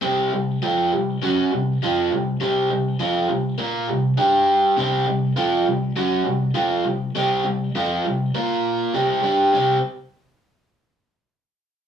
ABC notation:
X:1
M:4/4
L:1/8
Q:1/4=101
K:Bbmix
V:1 name="Overdriven electric guitar" clef=bass
[C,G,C] [C,G,] [F,CF] [C,G,] [^F,_D^F] [C,G,] [=F,C=F] [C,G,] | [C,G,C] [C,G,] [F,CF] [C,G,] [B,FB] [C,G,] [G,DG]2 | [C,G,C] [C,G,] [F,CF] [C,G,] [^F,_D^F] [C,G,] [=F,C=F] [C,G,] | [C,G,C] [C,G,] [F,CF] [C,G,] [B,FB]2 [C,G,C] [G,DG] |
[C,G,C] z6 z |]